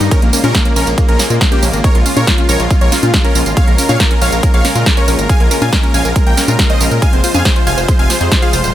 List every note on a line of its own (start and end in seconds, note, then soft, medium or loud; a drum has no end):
0.01 0.09 G2 medium
0.01 0.08 G3 medium
0.01 0.10 D#4 medium
0.01 closed hi-hat medium
0.01 tambourine soft
0.11 0.27 C#3 medium
0.11 0.27 G#3 medium
0.11 0.19 G#3 medium
0.11 0.27 A#3 medium
0.11 0.21 C#4 medium
0.11 0.27 F4 medium
0.11 0.21 A#4 loud
0.11 kick loud
0.11 closed hi-hat loud
0.11 tambourine soft
0.22 0.30 A#1 medium
0.22 0.32 A#3 medium
0.22 0.27 A#3 medium
0.22 closed hi-hat medium
0.33 0.48 C#3 medium
0.33 0.48 G#3 medium
0.33 0.42 A#3 medium
0.33 0.48 A#3 loud
0.33 0.38 C#4 medium
0.33 0.48 F4 medium
0.33 open hi-hat loud
0.33 tambourine medium
0.44 0.52 A#2 medium
0.44 0.53 C#4 medium
0.44 0.49 F4 medium
0.44 0.53 A#4 medium
0.44 0.53 A#4 loud
0.44 closed hi-hat medium
0.44 tambourine soft
0.44 high conga medium
0.55 0.58 G#3 medium
0.55 0.64 A#3 medium
0.55 kick loud
0.55 snare loud
0.55 closed hi-hat loud
0.55 tambourine soft
0.65 0.73 C#3 medium
0.65 0.73 G#3 medium
0.65 0.73 A#3 medium
0.65 0.75 A#3 medium
0.65 0.70 C#4 medium
0.65 0.73 F4 medium
0.65 closed hi-hat medium
0.76 0.84 A#1 loud
0.76 0.91 C#3 medium
0.76 0.91 G#3 medium
0.76 0.91 A#3 loud
0.76 0.81 C#4 medium
0.76 0.86 C#4 medium
0.76 0.91 F4 loud
0.76 0.86 A#4 loud
0.76 0.86 A#4 medium
0.76 open hi-hat medium
0.76 tambourine medium
0.87 0.95 A#1 medium
0.87 0.96 A#3 medium
0.87 closed hi-hat medium
0.87 tambourine soft
0.98 1.13 C#3 medium
0.98 1.05 G#3 medium
0.98 1.13 G#3 medium
0.98 1.07 A#3 medium
0.98 1.13 A#3 medium
0.98 1.13 F4 medium
0.98 kick loud
0.98 closed hi-hat loud
0.98 tambourine soft
1.08 1.17 A#1 medium
1.08 1.14 A#3 medium
1.08 1.18 C#4 medium
1.08 1.18 A#4 loud
1.08 closed hi-hat medium
1.19 1.27 C#3 medium
1.19 1.27 G#3 medium
1.19 1.29 A#3 medium
1.19 1.27 A#3 medium
1.19 1.24 C#4 medium
1.19 1.27 F4 medium
1.19 snare medium
1.19 open hi-hat loud
1.19 tambourine medium
1.30 1.38 A#2 medium
1.30 1.38 C#3 medium
1.30 1.38 G#3 medium
1.30 1.40 A#3 medium
1.30 1.38 A#3 medium
1.30 1.35 F4 medium
1.30 1.38 F4 medium
1.30 closed hi-hat medium
1.30 tambourine soft
1.41 1.56 C#3 medium
1.41 1.44 G#3 medium
1.41 1.56 G#3 medium
1.41 1.50 A#3 medium
1.41 1.56 A#3 medium
1.41 1.56 F4 medium
1.41 kick loud
1.41 snare loud
1.41 closed hi-hat loud
1.41 tambourine soft
1.52 1.61 A#3 medium
1.52 1.57 C#4 medium
1.52 1.61 G4 loud
1.52 1.61 G4 medium
1.52 closed hi-hat medium
1.63 1.71 A#1 loud
1.63 1.78 C#3 medium
1.63 1.78 G#3 medium
1.63 1.72 A#3 medium
1.63 1.78 A#3 medium
1.63 1.72 A#3 medium
1.63 1.67 C#4 medium
1.63 1.78 F4 medium
1.63 open hi-hat medium
1.63 tambourine medium
1.73 1.81 G#1 medium
1.73 1.83 A#3 medium
1.73 closed hi-hat medium
1.73 tambourine soft
1.84 1.99 C#3 medium
1.84 1.99 G#3 medium
1.84 1.92 G#3 medium
1.84 1.99 A#3 medium
1.84 1.99 F4 medium
1.84 1.94 A#4 medium
1.84 1.93 C#5 loud
1.84 1.94 C#5 loud
1.84 kick loud
1.84 closed hi-hat medium
1.84 tambourine soft
1.95 2.03 A#1 medium
1.95 2.00 A#3 medium
1.95 2.04 F4 medium
1.95 closed hi-hat medium
2.06 2.21 C#3 loud
2.06 2.21 G#3 loud
2.06 2.21 A#3 loud
2.06 2.11 C#4 medium
2.06 2.21 F4 medium
2.06 2.15 F4 medium
2.06 open hi-hat loud
2.06 tambourine medium
2.16 2.25 A#2 medium
2.16 2.21 F4 medium
2.16 2.26 A#4 medium
2.16 2.26 C#5 loud
2.16 2.26 C#5 medium
2.16 closed hi-hat medium
2.16 tambourine soft
2.16 high conga medium
2.27 2.30 G#3 medium
2.27 2.37 F4 medium
2.27 kick loud
2.27 snare loud
2.27 closed hi-hat loud
2.27 tambourine soft
2.38 2.46 C#3 medium
2.38 2.46 G#3 medium
2.38 2.46 A#3 medium
2.38 2.43 C#4 medium
2.38 2.46 F4 medium
2.38 2.47 F4 medium
2.38 2.48 F4 medium
2.38 closed hi-hat medium
2.49 2.57 A#1 loud
2.49 2.64 C#3 loud
2.49 2.64 G#3 loud
2.49 2.64 A#3 medium
2.49 2.54 C#4 medium
2.49 2.64 F4 loud
2.49 2.58 A#4 medium
2.49 2.58 C#5 medium
2.49 2.58 C#5 loud
2.49 open hi-hat medium
2.49 tambourine medium
2.60 2.68 A#1 medium
2.60 2.69 F4 medium
2.60 closed hi-hat medium
2.60 tambourine soft
2.70 2.86 C#3 medium
2.70 2.86 G#3 medium
2.70 2.78 G#3 medium
2.70 2.86 A#3 medium
2.70 2.86 F4 medium
2.70 2.80 F4 medium
2.70 kick loud
2.70 closed hi-hat medium
2.70 tambourine soft
2.81 2.89 A#1 medium
2.81 2.86 A#3 medium
2.81 2.91 A#4 medium
2.81 2.91 C#5 loud
2.81 closed hi-hat medium
2.92 3.00 C#3 medium
2.92 3.00 G#3 medium
2.92 3.00 A#3 medium
2.92 2.97 C#4 medium
2.92 3.00 F4 medium
2.92 3.01 F4 medium
2.92 snare medium
2.92 open hi-hat loud
2.92 tambourine medium
3.03 3.11 A#2 medium
3.03 3.10 C#3 medium
3.03 3.10 G#3 medium
3.03 3.10 A#3 medium
3.03 3.10 F4 medium
3.03 3.12 F4 medium
3.03 3.08 F4 medium
3.03 closed hi-hat medium
3.03 tambourine soft
3.03 high conga medium
3.14 3.29 C#3 medium
3.14 3.29 G#3 medium
3.14 3.17 G#3 medium
3.14 3.29 A#3 medium
3.14 3.29 F4 medium
3.14 3.23 F4 medium
3.14 kick loud
3.14 snare loud
3.14 closed hi-hat loud
3.14 tambourine soft
3.24 3.29 C#4 medium
3.24 3.34 C#4 medium
3.24 3.34 A#4 medium
3.24 closed hi-hat medium
3.35 3.43 A#1 loud
3.35 3.50 C#3 medium
3.35 3.50 G#3 medium
3.35 3.50 A#3 medium
3.35 3.40 C#4 medium
3.35 3.50 F4 medium
3.35 3.45 F4 medium
3.35 open hi-hat loud
3.35 tambourine medium
3.46 3.54 G#1 medium
3.46 3.55 F4 medium
3.46 closed hi-hat medium
3.46 tambourine soft
3.57 3.72 C#3 medium
3.57 3.72 G#3 medium
3.57 3.64 G#3 medium
3.57 3.72 A#3 medium
3.57 3.72 F4 medium
3.57 3.66 C#5 medium
3.57 3.66 F5 loud
3.57 kick loud
3.57 closed hi-hat medium
3.57 tambourine soft
3.68 3.76 A#1 medium
3.68 3.73 A#3 medium
3.68 3.77 A#4 medium
3.68 closed hi-hat medium
3.78 3.93 C#3 loud
3.78 3.93 G#3 medium
3.78 3.93 A#3 loud
3.78 3.83 C#4 medium
3.78 3.93 F4 medium
3.78 3.88 A#4 medium
3.78 open hi-hat loud
3.78 tambourine medium
3.89 3.97 A#2 medium
3.89 3.94 F4 medium
3.89 3.99 C#5 medium
3.89 3.99 F5 medium
3.89 closed hi-hat medium
3.89 tambourine soft
3.89 high conga medium
4.00 4.03 G#3 medium
4.00 4.09 A#4 medium
4.00 kick loud
4.00 snare loud
4.00 closed hi-hat medium
4.00 tambourine soft
4.11 4.18 C#3 medium
4.11 4.18 G#3 medium
4.11 4.18 A#3 medium
4.11 4.16 C#4 medium
4.11 4.18 F4 medium
4.11 4.20 A#4 medium
4.11 closed hi-hat medium
4.21 4.30 A#1 loud
4.21 4.37 C#3 medium
4.21 4.37 G#3 loud
4.21 4.37 A#3 medium
4.21 4.26 C#4 medium
4.21 4.37 F4 medium
4.21 4.31 C#5 medium
4.21 4.31 F5 loud
4.21 4.31 F5 medium
4.21 open hi-hat loud
4.21 tambourine medium
4.32 4.40 A#1 medium
4.32 4.42 A#4 medium
4.32 closed hi-hat medium
4.32 tambourine soft
4.43 4.58 C#3 medium
4.43 4.58 G#3 medium
4.43 4.51 G#3 medium
4.43 4.58 A#3 medium
4.43 4.58 F4 medium
4.43 4.53 A#4 medium
4.43 kick loud
4.43 closed hi-hat medium
4.43 tambourine soft
4.54 4.62 A#1 medium
4.54 4.59 A#3 medium
4.54 4.63 C#5 medium
4.54 4.63 F5 loud
4.54 closed hi-hat medium
4.65 4.72 C#3 medium
4.65 4.72 G#3 medium
4.65 4.72 A#3 medium
4.65 4.70 C#4 medium
4.65 4.72 F4 medium
4.65 4.74 A#4 medium
4.65 snare medium
4.65 open hi-hat loud
4.65 tambourine medium
4.75 4.84 A#2 medium
4.75 4.83 C#3 medium
4.75 4.83 G#3 medium
4.75 4.83 A#3 medium
4.75 4.83 F4 medium
4.75 4.80 F4 medium
4.75 4.85 A#4 medium
4.75 closed hi-hat medium
4.75 tambourine soft
4.86 5.01 C#3 medium
4.86 5.01 G#3 medium
4.86 4.89 G#3 medium
4.86 5.01 A#3 medium
4.86 5.01 F4 medium
4.86 4.96 A#4 medium
4.86 kick loud
4.86 snare loud
4.86 closed hi-hat medium
4.86 tambourine soft
4.97 5.02 C#4 medium
4.97 5.06 A#4 medium
4.97 5.06 C#5 medium
4.97 5.06 C#5 loud
4.97 closed hi-hat medium
5.08 5.16 A#1 loud
5.08 5.23 C#3 medium
5.08 5.23 G#3 medium
5.08 5.23 A#3 medium
5.08 5.13 C#4 medium
5.08 5.23 F4 medium
5.08 5.17 A#4 medium
5.08 open hi-hat loud
5.08 tambourine medium
5.19 5.27 G#1 medium
5.19 5.28 A#4 medium
5.19 closed hi-hat medium
5.19 tambourine soft
5.29 5.45 C#3 medium
5.29 5.37 G#3 medium
5.29 5.45 G#3 medium
5.29 5.45 A#3 medium
5.29 5.45 F4 medium
5.29 5.39 F5 medium
5.29 5.39 G#5 loud
5.29 kick loud
5.29 closed hi-hat medium
5.29 tambourine soft
5.40 5.48 A#1 medium
5.40 5.45 A#3 medium
5.40 5.50 A#4 medium
5.40 closed hi-hat soft
5.51 5.66 C#3 medium
5.51 5.66 G#3 loud
5.51 5.66 A#3 loud
5.51 5.56 C#4 medium
5.51 5.66 F4 medium
5.51 5.60 A#4 medium
5.51 open hi-hat loud
5.51 tambourine medium
5.62 5.70 A#2 medium
5.62 5.67 F4 medium
5.62 5.71 F5 medium
5.62 5.71 G#5 loud
5.62 5.71 G#5 medium
5.62 closed hi-hat medium
5.62 tambourine soft
5.62 high conga medium
5.73 5.76 G#3 medium
5.73 5.82 A#4 medium
5.73 kick loud
5.73 snare loud
5.73 closed hi-hat medium
5.73 tambourine soft
5.83 5.91 C#3 medium
5.83 5.91 G#3 medium
5.83 5.91 A#3 medium
5.83 5.88 C#4 medium
5.83 5.91 F4 medium
5.83 5.93 A#4 medium
5.83 closed hi-hat medium
5.94 6.02 A#1 loud
5.94 6.09 C#3 loud
5.94 6.09 G#3 medium
5.94 6.09 A#3 loud
5.94 5.99 C#4 medium
5.94 6.09 F4 medium
5.94 6.04 F5 medium
5.94 6.04 G#5 medium
5.94 6.04 G#5 loud
5.94 open hi-hat medium
5.94 tambourine medium
6.05 6.13 A#1 medium
6.05 6.14 A#4 medium
6.05 closed hi-hat medium
6.05 tambourine soft
6.16 6.31 C#3 medium
6.16 6.23 G#3 medium
6.16 6.31 G#3 medium
6.16 6.31 A#3 medium
6.16 6.31 F4 medium
6.16 6.25 A#4 medium
6.16 kick loud
6.16 closed hi-hat medium
6.16 tambourine soft
6.27 6.35 A#1 medium
6.27 6.32 A#3 medium
6.27 6.36 A#4 medium
6.27 6.36 G5 loud
6.27 closed hi-hat medium
6.37 6.45 C#3 medium
6.37 6.45 G#3 medium
6.37 6.45 A#3 medium
6.37 6.42 C#4 medium
6.37 6.45 F4 medium
6.37 6.47 A#4 medium
6.37 snare medium
6.37 open hi-hat loud
6.37 tambourine medium
6.48 6.56 A#2 medium
6.48 6.56 C#3 medium
6.48 6.56 G#3 medium
6.48 6.56 A#3 medium
6.48 6.56 F4 medium
6.48 6.53 F4 medium
6.48 6.58 A#4 medium
6.48 closed hi-hat medium
6.48 tambourine soft
6.48 high conga medium
6.59 6.74 C#3 medium
6.59 6.62 G#3 medium
6.59 6.74 G#3 medium
6.59 6.74 A#3 medium
6.59 6.74 F4 medium
6.59 6.68 A#4 medium
6.59 kick loud
6.59 snare loud
6.59 closed hi-hat medium
6.59 tambourine soft
6.70 6.75 C#4 medium
6.70 6.79 C5 medium
6.70 6.79 D#5 loud
6.70 closed hi-hat medium
6.80 6.89 A#1 loud
6.80 6.96 C#3 medium
6.80 6.96 G#3 medium
6.80 6.96 A#3 medium
6.80 6.85 C#4 medium
6.80 6.96 F4 medium
6.80 6.90 A#4 medium
6.80 open hi-hat loud
6.80 tambourine medium
6.91 6.99 A#2 medium
6.91 7.01 A#4 medium
6.91 closed hi-hat medium
6.91 tambourine soft
7.02 7.17 C3 medium
7.02 7.17 F3 medium
7.02 7.10 G#3 medium
7.02 7.17 G#3 medium
7.02 7.17 F4 medium
7.02 7.11 F5 medium
7.02 7.11 G#5 loud
7.02 7.12 G#5 loud
7.02 kick loud
7.02 closed hi-hat medium
7.02 tambourine soft
7.13 7.21 F1 medium
7.13 7.18 C4 medium
7.13 7.22 C5 medium
7.13 closed hi-hat medium
7.24 7.39 C3 loud
7.24 7.39 F3 medium
7.24 7.39 G#3 loud
7.24 7.39 F4 medium
7.24 7.29 F4 medium
7.24 7.33 C5 medium
7.24 open hi-hat loud
7.24 tambourine medium
7.34 7.43 F2 medium
7.34 7.39 G#4 medium
7.34 7.44 F5 medium
7.34 7.44 G#5 loud
7.34 7.44 G#5 medium
7.34 closed hi-hat medium
7.34 tambourine soft
7.34 high conga medium
7.45 7.48 G#3 medium
7.45 7.55 C5 medium
7.45 kick loud
7.45 snare loud
7.45 closed hi-hat medium
7.45 tambourine soft
7.56 7.64 C3 medium
7.56 7.64 F3 medium
7.56 7.64 G#3 medium
7.56 7.64 F4 medium
7.56 7.61 F4 medium
7.56 7.65 C5 medium
7.56 closed hi-hat medium
7.67 7.75 F1 loud
7.67 7.82 C3 medium
7.67 7.82 F3 loud
7.67 7.82 G#3 medium
7.67 7.82 F4 loud
7.67 7.72 F4 medium
7.67 7.76 F5 medium
7.67 7.76 G#5 medium
7.67 7.76 G#5 loud
7.67 open hi-hat medium
7.67 tambourine medium
7.78 7.86 F1 medium
7.78 7.87 C5 medium
7.78 closed hi-hat medium
7.78 tambourine soft
7.88 8.04 C3 medium
7.88 8.04 F3 medium
7.88 7.96 G#3 medium
7.88 8.04 G#3 medium
7.88 8.04 F4 medium
7.88 7.98 C5 medium
7.88 kick loud
7.88 closed hi-hat medium
7.88 tambourine soft
7.99 8.07 F1 medium
7.99 8.04 C4 medium
7.99 8.09 F5 medium
7.99 8.09 G#5 loud
7.99 closed hi-hat medium
8.10 8.18 C3 medium
8.10 8.18 F3 medium
8.10 8.18 G#3 medium
8.10 8.15 F4 medium
8.10 8.18 F4 medium
8.10 8.19 C5 medium
8.10 snare medium
8.10 open hi-hat loud
8.10 tambourine medium
8.21 8.29 F2 medium
8.21 8.28 C3 medium
8.21 8.28 F3 medium
8.21 8.28 G#3 medium
8.21 8.28 F4 medium
8.21 8.26 G#4 medium
8.21 8.30 C5 medium
8.21 closed hi-hat soft
8.21 tambourine soft
8.32 8.47 C3 medium
8.32 8.47 F3 medium
8.32 8.35 G#3 medium
8.32 8.47 G#3 medium
8.32 8.47 F4 medium
8.32 8.41 C5 medium
8.32 kick loud
8.32 snare loud
8.32 closed hi-hat medium
8.32 tambourine soft
8.42 8.47 F4 medium
8.42 8.52 G#4 medium
8.42 8.52 F5 medium
8.42 closed hi-hat medium
8.53 8.61 F1 loud
8.53 8.68 C3 medium
8.53 8.68 F3 medium
8.53 8.68 G#3 medium
8.53 8.68 F4 medium
8.53 8.58 F4 medium
8.53 8.63 C5 medium
8.53 open hi-hat medium
8.53 tambourine medium
8.64 8.72 D#1 medium
8.64 8.73 C5 medium
8.64 closed hi-hat medium
8.64 tambourine soft